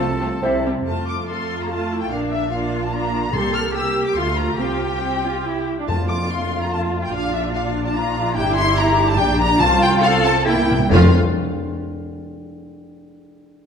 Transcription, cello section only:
Already playing: C3
0.43 C3
1.29 A4
1.70 F4
2.11 D4
2.52 F4
3.33 A4
3.74 G4
4.16 F4
4.59 G4
5.88 F4
7.14 D4
7.95 F4
8.36 E4
9.18 D4
9.60 F4
10.03 A4
10.47 E4
10.92 F2

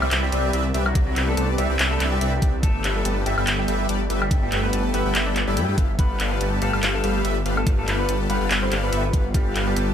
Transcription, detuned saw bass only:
0.02 C2
0.11 C2
0.32 C2
0.53 C2
0.74 C2
0.95 C2
1.16 C2
1.37 C2
1.58 C2
1.70 C2
1.79 C2
2.00 C2
2.21 C2
2.42 C2
2.63 G1
2.84 G1
3.05 G1
3.26 G1
3.38 G1
3.47 G1
3.68 G1
3.89 G1
4.10 G1
4.31 G1
4.52 G1
4.73 G1
4.94 G1
5.06 G1
5.15 G1
5.48 G1
5.57 G2
5.69 G2
5.78 G1
5.99 G1
6.20 G1
6.41 G1
6.62 G1
6.73 G1
6.83 G1
7.04 G1
7.25 G1
7.46 G1
7.67 G1
7.88 G1
8.09 G1
8.29 G1
8.41 G1
8.51 G1
8.71 G1
8.92 G1
9.13 G1
9.34 G1
9.55 G1
9.76 G1

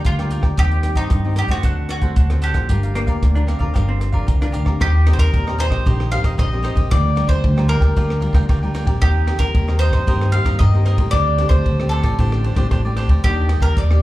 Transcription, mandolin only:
0.06 F4
0.59 G4
0.97 D#4
1.38 G4
1.51 F#4
1.90 F#4
2.44 G4
4.82 G4
5.13 C5
5.19 A#4
5.60 C5
6.12 F5
6.39 D#5
6.91 D5
7.29 C5
7.69 A#4
9.02 G4
9.39 A#4
9.79 C5
10.32 F5
10.59 D#5
11.11 D5
11.49 C5
11.89 A4
13.24 G4
13.62 A#4
13.78 D5

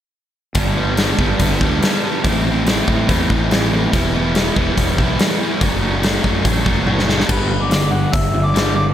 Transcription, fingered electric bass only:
0.55 G1
1.19 G1
1.40 G1
1.61 D2
2.25 A1
2.88 A2
3.09 E2
3.30 A1
3.93 E1
4.57 E1
4.78 E1
4.99 B1
5.62 F#1
6.25 F#2
6.45 A1
6.66 F#1
7.30 G1
8.14 G1

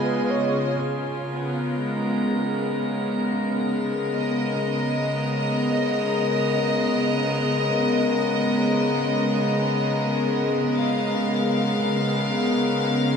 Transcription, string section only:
Already playing: C#3 G#3 B3 F4 D#5
0.78 C#3
1.33 B3
1.73 G#3
3.67 A#4
4.16 D#5
10.78 F5

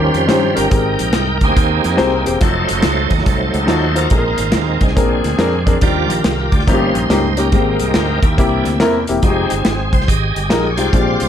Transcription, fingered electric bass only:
Already playing: D#2
0.15 F2
0.29 G2
0.58 G1
0.71 G#1
1.00 A#1
1.15 C2
1.42 D2
1.57 D#2
1.85 F2
2.00 C2
2.27 E1
2.41 F1
2.71 F#1
2.85 C#2
3.11 D#2
3.26 C2
3.54 C#2
3.70 D#2
4.11 A#1
4.38 G#1
4.54 D#2
4.81 C2
4.97 A#1
5.25 D2
5.39 F2
5.82 D#2
6.10 A#1
6.25 C2
6.52 D2
6.68 G1
6.95 A#1
7.10 C#2
7.53 G#1
7.81 C2
7.96 D2
8.23 D#2
8.38 C2
8.66 D2
8.82 E2
9.10 E1
9.23 F1
9.52 G1
9.66 G#1
9.93 C2
10.09 G#1
10.36 G1
10.52 A#1
10.80 C2
10.93 A#1
11.22 C2

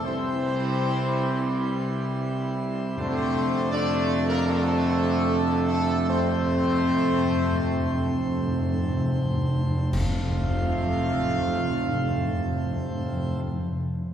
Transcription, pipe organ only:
Already playing: C3 C5
0.05 G3 E4
2.97 C3 A3 D4 C5
6.10 C4
9.93 C3 A3 C4 C5

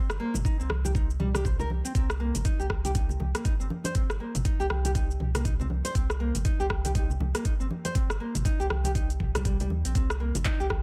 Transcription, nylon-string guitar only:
0.20 A#3
0.45 D#4
0.60 C4
0.85 G4
0.95 D#4
1.20 G3
1.35 G4
1.45 C5
1.60 A#4
1.85 C4
1.95 C4
2.20 A#3
2.45 D#4
2.60 G4
2.85 G4
2.95 D#4
3.35 A#3
3.45 D#4
3.60 C4
3.85 C5
3.95 C4
4.20 A#3
4.45 D#4
4.60 G4
4.85 G4
4.95 D#4
5.35 A#3
5.45 D#4
5.60 C4
5.85 C5
5.95 C4
6.20 A#3
6.45 D#4
6.60 G4
6.85 G4
6.95 D#4
7.35 A#3
7.45 D#4
7.60 C4
7.85 C5
7.95 C4
8.20 A#3
8.45 D#4
8.60 G4
8.85 G4
8.95 D#4
9.35 G3
9.45 G3
9.60 G3
9.85 C4
9.95 C4
10.20 A#3
10.45 D#4
10.60 G4

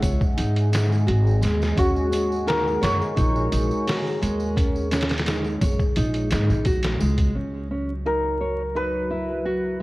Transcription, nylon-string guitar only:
0.03 C#5
0.37 D#4
0.72 D#4
1.07 F#4
1.41 G#3
1.76 C#4
2.12 C#4
2.46 D#4
2.81 C#5
3.16 D#4
3.52 D#4
3.87 F#4
4.21 G#3
4.56 C#4
4.91 C#4
5.27 D#4
5.62 C#5
5.97 D#4
6.31 D#4
6.66 F#4
7.01 G#3
7.35 C#4
7.71 C#4
8.06 D#4
8.41 C#5
8.75 D#4
9.11 E4
9.45 F#4

